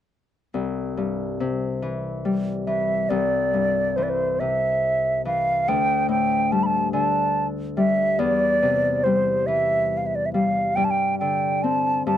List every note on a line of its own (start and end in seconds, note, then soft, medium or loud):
0.54 3.09 C2 soft
0.97 1.44 G2 soft
1.40 3.15 C3 soft
1.82 2.66 E3 soft
2.25 3.15 G3 soft
2.66 3.15 E3 soft
2.66 3.11 E5 medium
3.09 5.73 C2 medium
3.09 3.98 D5 medium
3.53 4.46 G2 soft
3.96 4.46 E3 soft
3.96 4.05 C5 medium
4.03 4.11 D5 medium
4.09 4.41 C5 medium
4.40 5.73 C3 soft
4.40 5.25 E5 medium
5.25 5.73 E3 soft
5.25 5.70 F5 medium
5.68 8.25 D2 medium
5.68 6.10 G5 medium
6.09 6.99 A2 soft
6.09 6.53 G5 medium
6.52 6.99 G3 soft
6.52 6.65 A5 medium
6.63 6.78 A5 medium
6.63 6.68 B5 medium
6.78 6.92 A5 medium
6.93 8.25 D3 soft
6.93 7.47 A5 medium
7.77 8.25 G3 medium
7.77 8.21 E5 medium
8.19 10.82 E2 medium
8.19 9.05 D5 medium
8.62 10.82 C3 soft
9.04 10.33 G3 soft
9.04 9.48 C5 medium
9.47 10.82 E3 soft
9.47 9.99 E5 medium
9.97 10.08 F5 medium
10.06 10.17 E5 medium
10.15 10.27 D5 medium
10.26 10.33 E5 medium
10.33 10.82 G3 soft
10.33 10.77 F5 medium
10.76 12.05 G2 medium
10.76 10.86 G5 medium
10.84 10.92 A5 medium
10.90 11.18 G5 medium
11.19 12.12 D3 soft
11.19 11.64 G5 medium
11.63 12.18 C4 soft
11.63 12.06 A5 medium
12.07 12.18 G2 medium
12.07 12.18 A5 medium